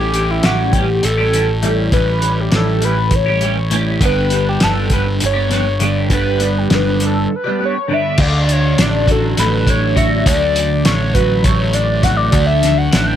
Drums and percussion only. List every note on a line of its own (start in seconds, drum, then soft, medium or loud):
0.14 closed hi-hat medium
0.43 snare loud
0.43 closed hi-hat medium
0.73 kick medium
0.73 closed hi-hat medium
1.03 closed hi-hat medium
1.33 closed hi-hat medium
1.63 closed hi-hat medium
1.92 kick loud
1.92 closed hi-hat medium
2.22 closed hi-hat medium
2.52 snare loud
2.52 closed hi-hat medium
2.82 closed hi-hat medium
3.11 kick medium
3.11 closed hi-hat medium
3.41 closed hi-hat medium
3.71 closed hi-hat medium
4.01 kick medium
4.01 closed hi-hat medium
4.30 closed hi-hat medium
4.60 snare loud
4.60 closed hi-hat medium
4.90 kick medium
4.90 closed hi-hat medium
5.20 closed hi-hat medium
5.51 snare soft
5.51 closed hi-hat medium
5.80 closed hi-hat medium
6.10 kick medium
6.10 closed hi-hat medium
6.40 closed hi-hat medium
6.70 snare loud
6.70 closed hi-hat medium
7.00 closed hi-hat medium
8.18 kick loud
8.18 crash medium
8.49 closed hi-hat medium
8.78 snare loud
8.78 closed hi-hat medium
9.08 kick medium
9.08 closed hi-hat medium
9.37 snare soft
9.37 closed hi-hat medium
9.67 kick medium
9.67 closed hi-hat medium
9.96 kick medium
9.96 closed hi-hat medium
10.26 kick loud
10.26 closed hi-hat medium
10.56 closed hi-hat medium
10.85 snare loud
10.85 closed hi-hat medium
11.15 kick medium
11.15 closed hi-hat medium
11.44 kick loud
11.44 closed hi-hat medium
11.73 closed hi-hat medium
12.03 kick medium
12.03 snare soft
12.03 closed hi-hat medium
12.32 kick loud
12.32 closed hi-hat medium
12.63 snare soft
12.63 closed hi-hat medium
12.93 snare loud
12.93 closed hi-hat medium